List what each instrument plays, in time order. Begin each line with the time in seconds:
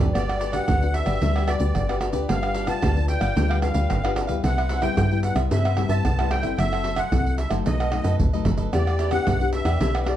Already playing: nylon-string guitar D3
0.00 fm bass D2, nylon-string guitar D4 F#4 B4, cavaquinho G4 B4 D5, pandeiro, shaker, surdo
0.14 fm bass G1, nylon-string guitar G3, cavaquinho F#4 G4 B4 D5, accordion D5, pandeiro, tamborim, shaker, surdo
0.28 cavaquinho G4 B4 D5, pandeiro, tamborim, shaker
0.40 cavaquinho F#4 G4 B4 D5, pandeiro, shaker
0.52 nylon-string guitar D4 F#4 B4, cavaquinho G4 B4 D5, accordion F#5, pandeiro, tamborim, shaker, surdo
0.68 fm bass D2, nylon-string guitar D3, cavaquinho F#4 G4 B4 D5, pandeiro, tamborim, shaker, surdo
0.82 nylon-string guitar D4 F#4 B4, muted cavaquinho stroke, pandeiro, shaker
0.94 accordion E5, pandeiro, shaker
1.06 fm bass G1, cavaquinho G4 B4 D5, pandeiro, tamborim, shaker, surdo
1.22 fm bass D2, nylon-string guitar G3 D4 F#4 B4, cavaquinho F#4 G4 B4 D5, pandeiro, shaker, surdo
1.36 cavaquinho G4 B4 D5, pandeiro, tamborim, shaker
1.47 nylon-string guitar D4 F#4 B4, accordion D5, muted cavaquinho stroke, pandeiro, tamborim, shaker, surdo
1.59 fm bass D2, cavaquinho G4 B4 D5, pandeiro, shaker, surdo
1.75 fm bass G1, nylon-string guitar D3, pandeiro, tamborim, shaker, surdo
1.89 nylon-string guitar D4 F#4 B4, cavaquinho G4 B4 D5, pandeiro, tamborim, shaker
2.00 cavaquinho F#4 G4 B4 D5, pandeiro, tamborim, shaker
2.12 fm bass D2, nylon-string guitar D4 F4 B4, cavaquinho G4 B4 D5, pandeiro, shaker, surdo
2.28 fm bass G1, nylon-string guitar G3, cavaquinho D4 G4 B4 F5, accordion F5, pandeiro, tamborim, shaker, surdo
2.42 cavaquinho G4 B4 F5, pandeiro, tamborim, shaker
2.54 cavaquinho D4 G4 B4 F5, pandeiro, shaker
2.66 nylon-string guitar D4 F4 B4, cavaquinho G4 B4 F5, accordion A5, pandeiro, tamborim, shaker, surdo
2.82 fm bass D2, nylon-string guitar D3, cavaquinho D4 G4 B4 F5, pandeiro, tamborim, shaker, surdo
2.97 nylon-string guitar D4 F4 B4, muted cavaquinho stroke, pandeiro, shaker
3.08 accordion G5, pandeiro, shaker
3.20 fm bass G1, cavaquinho G4 B4 F5, pandeiro, tamborim, shaker, surdo
3.36 fm bass D2, nylon-string guitar G3 D4 F4 B4, cavaquinho D4 G4 B4 F5, pandeiro, shaker, surdo
3.49 cavaquinho G4 B4 F5, pandeiro, tamborim, shaker
3.62 nylon-string guitar D4 F4 B4, accordion F5, muted cavaquinho stroke, pandeiro, tamborim, shaker, surdo
3.74 fm bass D2, cavaquinho G4 B4 F5, pandeiro, shaker, surdo
3.90 fm bass G1, nylon-string guitar D3, pandeiro, tamborim, shaker, surdo
4.03 nylon-string guitar D4 F4 B4, cavaquinho G4 B4 F5, pandeiro, tamborim, shaker
4.15 cavaquinho D4 G4 B4 F5, pandeiro, tamborim, shaker
4.27 fm bass D2, nylon-string guitar G3 B3 E4, cavaquinho G4 B4 F5, pandeiro, shaker, surdo
4.43 fm bass C2, nylon-string guitar C3, cavaquinho E4 B4 C5 E5, accordion F#5, pandeiro, tamborim, shaker, surdo
4.58 cavaquinho B4 C5 E5, pandeiro, tamborim, shaker
4.69 cavaquinho E4 B4 C5 E5, pandeiro, shaker
4.81 nylon-string guitar G3 B3 E4, cavaquinho B4 C5 E5, accordion G5, pandeiro, tamborim, shaker, surdo
4.97 nylon-string guitar G2, fm bass G2, cavaquinho E4 B4 C5 E5, pandeiro, tamborim, shaker, surdo
5.11 nylon-string guitar G3 B3 E4, muted cavaquinho stroke, pandeiro, shaker
5.23 accordion F#5, pandeiro, shaker
5.35 fm bass C2, cavaquinho B4 C5 E5, pandeiro, tamborim, shaker, surdo
5.51 fm bass G2, nylon-string guitar C3 G3 B3 E4, cavaquinho E4 B4 C5 E5, accordion E5, pandeiro, shaker, surdo
5.64 cavaquinho B4 C5 E5, pandeiro, tamborim, shaker
5.77 nylon-string guitar G3 B3 E4, muted cavaquinho stroke, pandeiro, tamborim, surdo
5.89 fm bass G2, cavaquinho B4 C5 E5, accordion A5, pandeiro, shaker, surdo
6.05 fm bass C2, nylon-string guitar G2, pandeiro, tamborim, shaker, surdo
6.19 nylon-string guitar G3 B3 E4, cavaquinho B4 C5 E5, pandeiro, tamborim, shaker
6.30 cavaquinho E4 B4 C5 E5, accordion G5, pandeiro, tamborim
6.42 fm bass G1, nylon-string guitar C4 E4 A4, cavaquinho B4 C5 E5, pandeiro, shaker, surdo
6.58 fm bass F#1, nylon-string guitar F#3, cavaquinho F#4 A4 C5 E5, accordion E5, pandeiro, tamborim, shaker, surdo
6.72 cavaquinho A4 C5 E5, pandeiro, tamborim, shaker
6.84 cavaquinho F#4 A4 C5 E5, pandeiro
6.96 cavaquinho A4 C5 E5, accordion F#5, pandeiro, tamborim, shaker, surdo
7.12 fm bass C2, nylon-string guitar F#3 C4 E4 A4, cavaquinho F#4 A4 C5 E5, pandeiro, tamborim, shaker, surdo
7.26 muted cavaquinho stroke, pandeiro, shaker
7.38 accordion E5, pandeiro, shaker
7.49 fm bass F#1, nylon-string guitar F#3 A3 D#4, cavaquinho A4 C5 E5, pandeiro, tamborim, shaker, surdo
7.65 fm bass B1, nylon-string guitar B2, cavaquinho D#4 A4 B4 D#5, accordion D#5, pandeiro, shaker, surdo
7.80 cavaquinho A4 B4 D#5, pandeiro, tamborim, shaker
7.91 nylon-string guitar F#3 A3 D#4, muted cavaquinho stroke, pandeiro, tamborim, surdo
8.03 fm bass F#2, cavaquinho A4 B4 D#5, pandeiro, tamborim, shaker, surdo
8.20 fm bass A1, nylon-string guitar F#2, surdo, pandeiro, shaker
8.33 nylon-string guitar F#3 A3 D#4, cavaquinho A4 B4 D#5, pandeiro, shaker
8.45 fm bass F#1, cavaquinho D#4 A4 B4 D#5, pandeiro, shaker, surdo
8.57 cavaquinho A4 B4 D#5, pandeiro, shaker, surdo
8.73 fm bass E2, nylon-string guitar E3 B3 D4 G4, cavaquinho E4 G4 B4 D5, accordion D5, pandeiro, tamborim, shaker, surdo
8.87 cavaquinho G4 B4 D5, pandeiro, tamborim, shaker
8.99 cavaquinho E4 G4 B4 D5, pandeiro, shaker
9.11 nylon-string guitar B3 D4 G4, cavaquinho G4 B4 D5, accordion F#5, pandeiro, tamborim, shaker, surdo
9.27 fm bass B1, nylon-string guitar B2, cavaquinho E4 G4 B4 D5, pandeiro, tamborim, shaker, surdo
9.40 nylon-string guitar B3 D4 G4, muted cavaquinho stroke, pandeiro, shaker
9.53 accordion E5, pandeiro, shaker
9.65 fm bass E2, cavaquinho G4 B4 D5, pandeiro, tamborim, shaker, surdo
9.80 fm bass B1, nylon-string guitar E3 B3 D4 G4, cavaquinho E4 G4 B4 D5, pandeiro, shaker, surdo
9.94 cavaquinho G4 B4 D5, pandeiro, tamborim, shaker
10.01 accordion E5
10.05 nylon-string guitar B3 D4 G4, accordion D5, muted cavaquinho stroke, pandeiro, tamborim, surdo